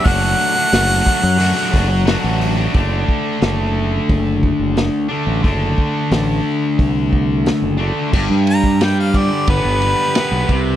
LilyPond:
<<
  \new Staff \with { instrumentName = "Harmonica" } { \time 4/4 \key d \mixolydian \tempo 4 = 89 fis''2.~ fis''8 r8 | r1 | r1 | r8 bes''8 g''16 f''16 d''8 b'2 | }
  \new Staff \with { instrumentName = "Distorted electric guitar" } { \time 4/4 \key d \mixolydian <fis a d' fis'>8. <a d' fis'>16 <fis a d' fis'>8 <fis a d' fis'>8 <fis a d' fis'>16 <a d' fis'>16 <fis a d' fis'>8 <fis a d' fis'>8. <a d' fis'>16 | <d a d'>2.~ <d a d'>8 <d a d'>8 | <d a d'>2.~ <d a d'>8 <d a d'>8 | g,4 g8 d8 b8 g8 b8 c8 | }
  \new Staff \with { instrumentName = "Fingered electric bass" } { \clef bass \time 4/4 \key d \mixolydian fis,,8 r8 fis,,8 r16 fis,8 r16 fis,,8. a,,8. | fis,,8 r8 fis,,4 fis,,8. fis,,8 r8 a,,16 | fis,,8 r8 a,,8 r8 c,4~ c,16 fis,,8 r16 | g,,16 g,4.~ g,16 g,,16 g,,8 r8 b,,16 c,8 | }
  \new DrumStaff \with { instrumentName = "Drums" } \drummode { \time 4/4 <hho bd>8 hho8 <hho sn>16 sn16 <hho bd>8 hho8 <hho bd>8 <hho sn>8 hho8 | <hho bd>8 bd8 <hho sn>4 <hho bd>8 bd8 <hho sn>4 | <hho bd>8 bd8 <hho sn>4 <hho bd>8 bd8 <hho sn>4 | <cymc bd>8 cymr16 bd16 <cymr sn>8 <bd cymr>8 <bd cymr>8 cymr8 <cymr sn>8 <bd cymr>8 | }
>>